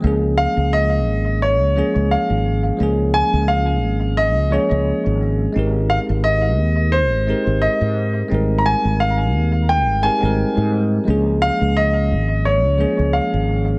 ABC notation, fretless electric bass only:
X:1
M:4/4
L:1/16
Q:"Swing 16ths" 1/4=87
K:Dblyd
V:1 name="Fretless electric bass" clef=bass
D,,2 z D,,3 A,,,3 D,, z D,, z A,,,2 z | D,,2 z D,,3 A,,,3 D,, z D,, z A,,,2 z | A,,,2 z A,,,3 E,,3 A,,, z A,,, z A,,2 z | A,,,2 z A,,,3 E,,3 A,,, z A,,, z A,,2 z |
D,,2 z D,,3 A,,,3 D,, z D,, z A,,,2 z |]